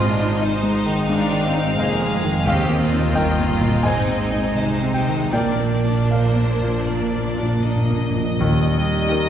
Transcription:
Already playing: double bass section G#1, grand piano G#2 G#3 D#5 G#5 C6, cello section G#2, viola section F4, violin section D#5
0.07 violin section D4
0.20 grand piano D#4
0.41 violin section D#4 C5, viola section D#4, grand piano D#5
0.63 grand piano G#3
0.75 violin section C5
0.86 grand piano D#3
1.09 grand piano G#3, viola section D4, violin section F5
1.31 grand piano D#3
1.45 viola section C4
1.55 grand piano D#4
1.79 double bass section F1, cello section F2, viola section A#3, violin section G#4, grand piano G#4 C5 D#5
2.02 grand piano G#3
2.14 viola section G#3
2.24 grand piano D#3
2.47 grand piano D#2 F5, cello section D#2, double bass section D#2, viola section C4, violin section G4 D#5
2.69 grand piano A#3
2.82 violin section F4
2.93 grand piano D#4
3.15 double bass section G1, cello section G2, viola section A#3, grand piano A#4 D#5 G5
3.38 grand piano A#3
3.51 viola section C4
3.61 grand piano A#2
3.83 double bass section G#1, grand piano G#2 C5 D#5 G#5, cello section G#2, violin section D#4 D#5
4.07 grand piano C4
4.21 violin section D#4
4.31 grand piano D#4
4.56 double bass section C2, cello section C3, viola section G#3, violin section C5, grand piano D#5
4.82 grand piano C4
4.94 viola section G#3, grand piano G5
5.08 grand piano D#3
5.32 double bass section A#1, grand piano A#2 A#4 D5 G5, cello section A#2, viola section A#3, violin section D4 D5
5.60 grand piano A#3
5.84 grand piano D4
5.92 timpani A#2
6.01 timpani A#2
6.09 timpani A#2, grand piano A#4 D5 F5, violin section C5
6.36 grand piano A#3
6.59 timpani A#2, grand piano F3
6.67 timpani A#2
6.77 timpani A#2
6.85 timpani A#2, grand piano A#3, violin section D5
6.93 timpani A#2
7.01 timpani A#2
7.10 timpani A#2, grand piano F3
7.18 timpani A#2
7.26 timpani A#2
7.34 timpani A#2
7.38 grand piano D4
7.42 timpani A#2
7.51 timpani A#2
7.58 timpani A#2
7.64 timpani A#2, grand piano A#4, violin section D#5
7.76 timpani A#2
7.85 timpani A#2
7.90 timpani A#2, grand piano A#3
8.02 timpani A#2
8.10 timpani A#2
8.16 timpani A#2, grand piano F3
8.25 timpani A#2
8.39 cello section D#2, double bass section D#2, grand piano D#2, french horn section G3 D#4, violin section D#5
8.76 grand piano G3
9.10 viola section A#3 D#4, violin section G4 A#4, grand piano A#4

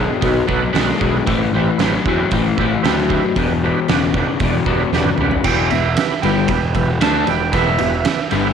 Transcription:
Already playing: overdriven electric guitar B2 G#3, tonewheel organ D#4 F#4 A4 B4
0.21 picked electric bass B1, overdriven electric guitar B2 F#3, tonewheel organ D#4 F#4 A4 B4, kick, open hi-hat
0.47 picked electric bass B1, overdriven electric guitar B2 F#3, tonewheel organ D#4 F#4 A4 B4, kick
0.73 picked electric bass B1, overdriven electric guitar B2 G#3, tonewheel organ D#4 F#4 A4 B4, snare, open hi-hat
0.90 snare
0.98 picked electric bass B1, overdriven electric guitar B2 G#3, tonewheel organ D#4 F#4, kick
1.03 tonewheel organ A4 B4
1.25 picked electric bass A1, overdriven electric guitar A2 E3, tonewheel organ C4 E4 G4 B4, kick, open hi-hat
1.52 picked electric bass A1, overdriven electric guitar A2 E3, tonewheel organ C4 E4 G4
1.56 tonewheel organ B4
1.78 picked electric bass A1, overdriven electric guitar A2 F#3, tonewheel organ C4 E4 G4 B4, snare, open hi-hat
2.06 picked electric bass E2, overdriven electric guitar A2 F#3, tonewheel organ C4 E4 G4 B4, kick
2.31 picked electric bass A1, overdriven electric guitar A2 E3, tonewheel organ C4 E4 G4 B4, kick, open hi-hat
2.56 picked electric bass A1, overdriven electric guitar A2 E3, tonewheel organ C4 E4 G4 B4, kick
2.83 picked electric bass D2, overdriven electric guitar A2 F#3, tonewheel organ C4 E4 G4 B4, snare, open hi-hat
2.98 snare
3.08 overdriven electric guitar A2 F#3, tonewheel organ C4 E4 G4 B4, kick
3.36 picked electric bass E1, overdriven electric guitar E2 B2, tonewheel organ D4 F#4 G4 B4, kick, open hi-hat
3.63 overdriven electric guitar E2 B2, tonewheel organ D4 F#4 G4 B4
3.88 picked electric bass E1, overdriven electric guitar E2 C#3, tonewheel organ D4 F#4 G4 B4, snare, open hi-hat
4.14 overdriven electric guitar E2 C#3, tonewheel organ D4 G4 B4, kick
4.18 tonewheel organ F#4
4.40 picked electric bass E1, overdriven electric guitar E2 B2, tonewheel organ D4 D5, kick, open hi-hat
4.44 tonewheel organ F#4 G4
4.66 picked electric bass E1, overdriven electric guitar E2 B2, tonewheel organ D4 F#4 G4 B4, kick
4.92 picked electric bass E1, overdriven electric guitar E2 C#3, tonewheel organ D4 G4 B4, snare
4.96 tonewheel organ F#4
5.04 high tom
5.18 picked electric bass E1, overdriven electric guitar E2 C#3, tonewheel organ D4 F#4 G4 B4, mid tom
5.31 floor tom
5.44 picked electric bass E1, overdriven electric guitar E2 B2 E3, tonewheel organ E4 G4, lead electric guitar G5, kick, crash
5.48 tonewheel organ B3 B4
5.70 picked electric bass E1, overdriven electric guitar E2 B2, tonewheel organ B3 E4, lead electric guitar E5, ride
5.75 tonewheel organ G4 B4
5.97 tonewheel organ B3 E4 G4, snare, ride
6.01 tonewheel organ B4
6.22 picked electric bass G1, overdriven electric guitar G2 D3 G3, tonewheel organ B3 E4 G4 B4, lead electric guitar G5, ride
6.48 picked electric bass E1, overdriven electric guitar E2 B2, tonewheel organ B3 E4 G4 B4, kick, ride
6.75 picked electric bass E1, overdriven electric guitar E2 B2, tonewheel organ B3 E4 G4 B4, kick, ride
7.00 picked electric bass D2, overdriven electric guitar D3 A3 D4, tonewheel organ B3 E4 G4 B4, lead electric guitar A5, snare, ride
7.26 picked electric bass E1, overdriven electric guitar E2 B2, tonewheel organ B3 E4 G4 B4, lead electric guitar G5, ride
7.52 picked electric bass E1, overdriven electric guitar E2 B2 E3, tonewheel organ B3 E4 G4 B4, lead electric guitar E5, kick, ride
7.79 picked electric bass E1, overdriven electric guitar E2 B2, tonewheel organ B3 E4 G4 B4, ride
8.04 tonewheel organ B3 E4 G4 B4, snare, ride
8.31 picked electric bass G1, overdriven electric guitar G2 D3 G3, tonewheel organ B3 E4 G4 B4, ride

